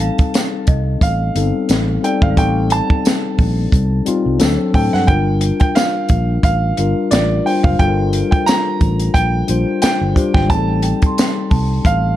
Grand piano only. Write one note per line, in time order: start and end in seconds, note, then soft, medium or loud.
0.00 0.64 A5 loud
1.02 2.07 F5 medium
2.04 2.23 G5 medium
2.22 2.38 F5 medium
2.38 2.73 G5 medium
2.72 4.81 A5 loud
4.75 4.94 G5 medium
4.93 5.09 F#5 medium
5.07 5.58 G5 loud
5.60 5.76 G5 medium
5.75 6.42 F5 loud
6.44 7.14 F5 loud
7.11 7.46 D5 medium
7.46 7.63 G5 medium
7.63 7.80 F5 medium
7.79 8.30 G5 loud
8.31 8.47 G5 medium
8.46 9.16 A#5 loud
9.14 9.78 G5 loud
9.82 10.33 G5 loud
10.34 10.50 G5 medium
10.50 11.47 A5 medium
11.86 12.16 F5 loud